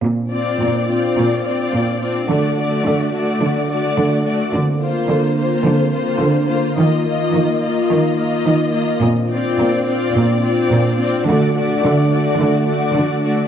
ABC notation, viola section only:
X:1
M:4/4
L:1/8
Q:1/4=107
K:Bb
V:1 name="Viola section"
z C2 C2 C2 C | A, A,2 A,2 A,2 A, | z B,2 B,2 B,2 B, | B, B,2 B,2 B,2 B, |
z C2 C2 C2 C | A, A,2 A,2 A,2 A, |]